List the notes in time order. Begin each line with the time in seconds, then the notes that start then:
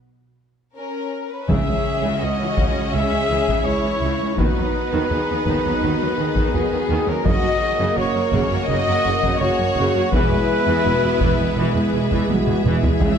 0.76 C#4 A#4
1.30 C#4 B4
1.46 C#2 C#3 G#3 C#4 E4 G#4 C#5 E5, taiko
1.50 E5
1.68 C#2 G#3
2.03 C#2 C#3
2.19 C#2 G#3 F#4 D#5
2.40 C#2 E3
2.57 C#2 C#3, taiko
2.76 C#2 G#3
2.92 C#2 C#3 G#4 E5
2.96 G#4
3.12 C#2 G#3
3.29 C#2 E3
3.47 C#2 C#3, taiko
3.64 C#2 G#3 E4 C#5
3.85 C#2 E3
4.00 C#2 C#3
4.21 C#2 G#3
4.35 D#2 D#3 B3 D#4 F#4 B4 D#5, taiko
4.40 D#2
4.56 D#2 F#3
4.93 D#2 D#3
5.09 D#2 F#3 G#4
5.29 D#2 D#3
5.44 D#2 D#3, taiko
5.65 D#2 F#3
5.82 D#2 D#3 F#4
6.01 D#2 F#3
6.17 D#2 D#3 G#4
6.35 D#2 D#3, taiko
6.52 D#2 F#3 B3 G#4
6.72 D#2 D#3
6.89 D#2 D#3
7.07 D#2 F#3 C#4 A#4
7.23 F#1 F#2 C#3 A#3 F#4 A#4 C#5 D#5, taiko
7.43 F#2 F#3
7.60 G#4
7.79 F#2 C#3
7.96 F#1 F#2 C#3 F#3 F#4 A#4 C#5
8.14 F#2 C#3
8.32 F#1 F#2 C#3 G#4, taiko
8.50 F#2 F#3
8.67 F#1 F#2 C#3 F#4 D#5
8.88 F#2 F#3
9.05 F#1 F#2 C#3 A#4
9.22 F#2 C#3, taiko
9.38 F#1 F#2 F#3 C#5
9.42 F#4 G#4
9.58 F#2 C#3
9.76 F#1 F#2 C#3 F#4
9.94 F#2 F#3
10.11 E1 E2 E3 G#3 B3 E4 G#4 B4 E5, taiko
10.31 E2 G#3
10.67 E2 E3
10.85 E1 E2 G#3 F#4
11.03 E2 E3
11.20 E1 E2 E3 E4, taiko
11.39 E2 G#3
11.55 E1 E2 E3
11.75 E2 G#3
11.93 E1 E2 E3
12.11 E2 E3, taiko
12.29 E1 E2 G#3 F#4, taiko high
12.47 E2 E3, taiko mid
12.65 E1 E2 E3 E4, taiko mid
12.83 E2 G#3, taiko low
13.00 C#2 C#3 C#4 G#4 C#5 E5, taiko